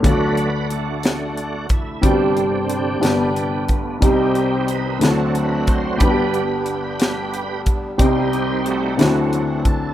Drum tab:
HH |xxxxxx|xxxxxx|xxxxxx|xxxxxx|
SD |---o--|---o--|---o--|---o--|
BD |o----o|o----o|o----o|o----o|

HH |xxxxxx|
SD |---o--|
BD |o----o|